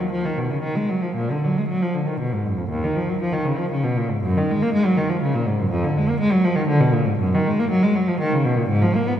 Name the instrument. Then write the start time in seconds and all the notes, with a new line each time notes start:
cello
0.00 F#3
0.11 F3
0.25 D#3
0.38 B2
0.51 C#3
0.63 D#3
0.76 G#3
0.89 F#3
1.02 F3
1.16 A#2
1.31 D3
1.44 F#3
1.58 G#3
1.68 F#3
1.82 F3
1.94 D3
2.07 D#3
2.20 B2
2.33 G#2
2.46 F#2
2.58 F2
2.70 D#2
2.84 D#3
2.95 F3
3.09 F#3
3.21 F3
3.33 D#3
3.45 C#3
3.58 F3
3.71 C#3
3.84 B2
3.97 A#2
4.11 G#2
4.24 F#2
4.37 D#3
4.51 G#3
4.62 A#3
4.74 G#3
4.85 F#3
4.97 D#3
5.09 F3
5.22 C#3
5.34 A#2
5.47 G#2
5.59 F#2
5.71 F2
5.84 D3
5.97 G#3
6.09 A#3
6.20 G#3
6.32 F#3
6.44 F3
6.55 D#3
6.67 D3
6.80 B2
6.93 A#2
7.05 G#2
7.19 F#2
7.35 D#3
7.47 G#3
7.59 A#3
7.70 F#3
7.83 G#3
7.96 F#3
8.08 F3
8.20 D#3
8.33 C#3
8.45 B2
8.57 A#2
8.69 G#2
8.82 F3
8.95 A#3
9.07 B3